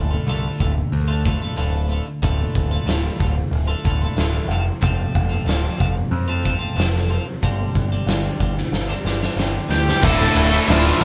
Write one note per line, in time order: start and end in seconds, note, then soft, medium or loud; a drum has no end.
0.00 0.15 D1 medium
0.00 0.26 D2 medium
0.00 0.26 A2 medium
0.00 0.13 D3 medium
0.00 0.11 A3 loud
0.00 0.10 F4 loud
0.11 0.28 D3 medium
0.11 0.29 A3 medium
0.11 0.29 F4 medium
0.27 0.48 C2 medium
0.27 0.92 D2 medium
0.27 0.57 A2 medium
0.27 0.58 D3 medium
0.27 0.60 A3 medium
0.27 0.60 F4 medium
0.27 open hi-hat soft
0.58 0.81 D1 medium
0.58 0.74 A2 medium
0.58 0.74 D3 medium
0.58 0.75 A3 medium
0.58 0.73 F4 medium
0.58 kick medium
0.74 muted clean electric guitar stroke soft
0.92 1.33 D2 medium
0.92 open hi-hat soft
1.08 1.25 D3 soft
1.08 1.26 A3 medium
1.08 1.27 F4 medium
1.25 1.55 A2 medium
1.25 1.43 D3 medium
1.25 1.43 A3 medium
1.25 1.41 F4 medium
1.25 kick medium
1.41 1.56 D3 medium
1.41 1.57 A3 medium
1.41 1.57 F4 medium
1.56 1.98 D1 medium
1.56 2.21 D2 medium
1.56 1.87 A2 medium
1.56 1.88 D3 medium
1.56 1.90 A3 medium
1.56 1.91 F4 medium
1.56 open hi-hat soft
1.88 2.07 A2 medium
1.88 2.06 D3 medium
1.88 2.06 A3 medium
1.88 2.06 F4 medium
2.06 muted clean electric guitar stroke soft
2.22 2.43 D1 medium
2.22 2.85 D2 medium
2.22 2.85 A2 medium
2.22 2.72 D3 medium
2.22 2.72 A3 medium
2.22 2.71 F4 medium
2.22 kick medium
2.22 open hi-hat soft
2.55 2.76 D1 medium
2.55 kick medium
2.71 2.86 D3 medium
2.71 2.87 A3 medium
2.71 2.87 F4 medium
2.86 3.07 D1 medium
2.86 3.52 D2 medium
2.86 3.17 A2 medium
2.86 3.18 D3 medium
2.86 3.20 A3 medium
2.86 3.20 F4 medium
2.86 snare loud
2.86 open hi-hat soft
3.18 3.41 D1 medium
3.18 3.35 A2 medium
3.18 3.35 D3 medium
3.18 3.36 A3 medium
3.18 3.35 F4 medium
3.18 kick medium
3.36 muted clean electric guitar stroke soft
3.51 3.72 D1 medium
3.51 open hi-hat medium
3.67 3.84 D3 soft
3.67 3.85 A3 medium
3.67 3.86 F4 medium
3.85 4.05 D1 medium
3.85 4.17 A2 medium
3.85 4.03 D3 medium
3.85 4.01 A3 medium
3.85 4.01 F4 medium
3.85 kick medium
4.02 4.17 D3 medium
4.02 4.18 A3 medium
4.02 4.19 F4 medium
4.17 4.38 D1 medium
4.17 4.48 D2 medium
4.17 4.49 A2 medium
4.17 4.49 D3 medium
4.17 4.49 A3 medium
4.17 4.50 F4 medium
4.17 snare loud
4.17 open hi-hat soft
4.48 4.69 F1 medium
4.48 4.80 F2 medium
4.48 4.80 C3 medium
4.48 4.64 F3 medium
4.48 4.63 A3 medium
4.48 4.65 C4 medium
4.48 4.63 F4 medium
4.65 muted clean electric guitar stroke soft
4.81 5.03 F1 medium
4.81 5.45 F2 medium
4.81 5.45 C3 medium
4.81 5.30 F3 medium
4.81 5.30 A3 medium
4.81 5.30 C4 medium
4.81 5.28 F4 loud
4.81 kick loud
4.81 open hi-hat soft
5.15 5.36 F1 medium
5.15 kick medium
5.29 5.46 F3 medium
5.29 5.46 A3 medium
5.29 5.48 C4 medium
5.29 5.48 F4 medium
5.45 5.66 D1 medium
5.45 6.12 F2 medium
5.45 6.12 C3 medium
5.45 5.77 F3 medium
5.45 5.78 A3 loud
5.45 5.79 C4 medium
5.45 5.79 F4 loud
5.45 open hi-hat soft
5.49 snare loud
5.78 6.01 F1 medium
5.78 5.94 F3 medium
5.78 5.94 A3 medium
5.78 5.94 C4 medium
5.78 5.94 F4 medium
5.78 kick medium
5.95 muted clean electric guitar stroke soft
6.11 6.53 F2 medium
6.11 open hi-hat soft
6.28 6.42 F3 medium
6.28 6.43 A3 medium
6.28 6.44 C4 medium
6.28 6.44 F4 medium
6.43 6.60 F3 medium
6.43 6.59 A3 medium
6.43 6.59 C4 medium
6.43 6.58 F4 medium
6.43 kick medium
6.59 6.75 F3 medium
6.59 6.75 A3 medium
6.59 6.76 C4 medium
6.59 6.77 F4 medium
6.75 7.18 F1 medium
6.75 7.40 F2 medium
6.75 7.40 C3 medium
6.75 7.08 F3 medium
6.75 7.08 A3 medium
6.75 7.09 C4 medium
6.75 7.09 F4 medium
6.75 open hi-hat soft
6.80 snare loud
6.96 snare soft
7.09 7.26 F3 medium
7.09 7.26 A3 medium
7.09 7.25 C4 medium
7.09 7.25 F4 medium
7.26 muted clean electric guitar stroke soft
7.42 7.64 G1 medium
7.42 8.07 G2 medium
7.42 8.08 D3 medium
7.42 7.93 G3 medium
7.42 7.92 C4 loud
7.42 7.92 D4 medium
7.42 7.91 G4 loud
7.42 kick medium
7.42 open hi-hat soft
7.75 7.96 G1 medium
7.75 kick medium
7.92 8.09 G3 medium
7.92 8.09 C4 medium
7.92 8.10 D4 medium
7.92 8.10 G4 medium
8.06 8.27 G1 medium
8.06 8.73 G2 medium
8.06 8.74 D3 medium
8.06 8.39 G3 medium
8.06 snare medium
8.06 open hi-hat soft
8.10 8.40 C4 medium
8.10 8.41 D4 medium
8.10 8.41 G4 loud
8.40 8.61 G1 medium
8.40 8.57 G3 medium
8.40 8.57 C4 medium
8.40 8.56 D4 medium
8.40 8.56 G4 medium
8.40 kick medium
8.57 muted clean electric guitar stroke soft
8.57 snare soft
8.72 8.93 G1 medium
8.72 snare soft
8.89 9.04 G3 medium
8.89 9.05 C4 medium
8.89 9.06 D4 medium
8.89 9.06 G4 medium
9.05 9.25 G1 medium
9.05 9.23 G3 medium
9.05 9.22 C4 medium
9.05 9.22 D4 medium
9.05 9.21 G4 medium
9.05 snare medium
9.22 9.37 G3 medium
9.22 9.38 C4 medium
9.22 9.38 D4 medium
9.22 9.38 G4 medium
9.22 snare medium
9.36 9.57 G1 medium
9.36 10.01 G2 medium
9.36 10.01 D3 medium
9.36 9.67 G3 medium
9.36 9.69 C4 medium
9.36 9.69 D4 medium
9.36 9.70 G4 loud
9.36 snare medium
9.69 9.90 D2 medium
9.69 9.86 G3 medium
9.69 9.86 C4 medium
9.69 9.85 D4 medium
9.69 10.01 G4 medium
9.69 9.85 G4 medium
9.69 10.01 G5 medium
9.69 snare medium
9.86 muted clean electric guitar stroke soft
9.86 snare medium
10.02 10.25 D1 loud
10.02 10.65 D2 loud
10.02 10.34 A2 loud
10.02 10.35 D3 loud
10.02 10.36 A3 loud
10.02 10.36 E4 loud
10.02 10.34 A4 medium
10.02 kick loud
10.02 crash loud
10.02 crash medium
10.06 10.37 A5 loud
10.18 10.67 D3 medium
10.18 10.68 A3 medium
10.18 10.67 E4 medium
10.35 10.57 D1 medium
10.35 10.66 A2 medium
10.35 10.52 D3 medium
10.35 10.52 A3 medium
10.35 10.50 E4 medium
10.35 10.67 A4 medium
10.35 10.67 A5 medium
10.35 crash medium
10.51 10.66 D3 medium
10.51 10.68 A3 medium
10.51 10.68 E4 medium
10.67 10.90 D1 medium
10.67 11.04 D2 loud
10.67 10.98 A2 loud
10.67 10.99 D3 loud
10.67 11.00 A3 loud
10.67 11.00 E4 loud
10.67 11.00 F4 medium
10.67 snare loud
10.67 crash medium
10.72 11.03 F5 medium
10.99 11.04 A1 medium
10.99 11.04 A2 medium
10.99 11.04 D3 medium
10.99 11.04 A3 medium
10.99 crash medium